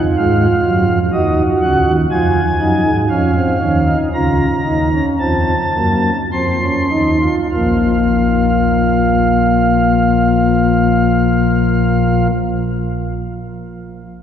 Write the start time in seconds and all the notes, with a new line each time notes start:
Already playing: F2 F3
0.18 G#2 G#3 F4 F5
0.65 F#2 F#3
0.88 F2 F3
1.12 D#2 D#3 F#4 D#5
1.62 C#2 C#3 F#5
1.85 D#2 D#3
2.11 F2 F3 F4 G#5
2.60 F#2 F#3 D#4
2.85 G#2 G#3
3.10 F2 F3 C#4 F5
3.36 C4
3.62 D#2 D#3 C#4
3.86 D#4
4.13 C#2 C#3 F4 A#5
4.66 D#2 D#3 D#4
4.93 C#4
5.19 F2 F3 C4 A5
5.75 F#2 F#3 A#3
6.32 F2 F3 C4 C6
6.62 C#4
6.91 D#2 D#3 D#4
7.21 F4
7.51 A#1 A#2 F3 A#3 F4 F5